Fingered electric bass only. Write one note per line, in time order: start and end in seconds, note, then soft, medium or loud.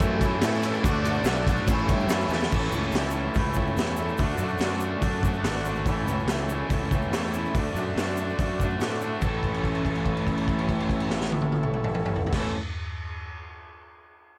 0.00 0.33 F#2 loud
0.42 0.75 A2 loud
0.84 1.17 D2 loud
1.24 1.57 B1 medium
1.67 1.83 A1 loud
1.89 2.05 G2 medium
2.07 2.24 F#2 loud
2.29 2.46 E2 loud
2.52 2.69 A1 loud
2.73 2.90 C#2 medium
2.93 3.28 C#2 medium
3.35 3.70 C#2 loud
3.76 4.12 E2 loud
4.18 4.36 D2 loud
4.38 4.56 F#2 medium
4.59 4.95 F#2 medium
5.01 5.37 F#2 medium
5.43 5.85 G#1 loud
5.85 6.03 A1 medium
6.05 6.23 C#2 medium
6.25 6.62 C#2 medium
6.69 7.05 C#2 medium
7.09 7.46 E2 medium
7.55 7.72 D2 medium
7.75 7.93 F#2 medium
7.96 8.32 F#2 medium
8.39 8.74 F#2 loud
8.78 9.15 A2 medium
9.21 12.23 A1 medium
12.32 12.50 A1 loud